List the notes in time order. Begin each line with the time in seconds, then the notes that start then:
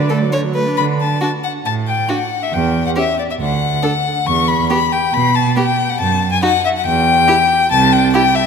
Already playing: D3 D4 D5
0.10 A3 A4
0.20 F#3
0.32 D3 C#5
0.43 F#3
0.55 A3 B4
0.66 D4
0.77 D3 B5
1.00 A5
1.21 D4 F#4 A5
1.44 F#5
1.65 A2 A5
1.88 G5
2.09 D4 F#4 F#5
2.43 E5
2.53 E2 G5
2.86 F#5
2.96 C#4 G4 E5
3.19 D5
3.31 E5
3.40 D2 F#5
3.83 D4 A4
4.26 E2 C#6
4.48 B5
4.69 B3 G4 B5
4.92 G5
5.13 B2 B5
5.35 A5
5.56 B3 G4 G5
5.89 F#5
6.00 F#2 A5
6.32 G#5
6.42 D#4 F#4 F#5
6.65 E5
6.76 F#5
6.85 E2 G5
7.28 E4 G4
7.71 C2 A5
7.92 G5
8.13 E4 G4 G5
8.35 E5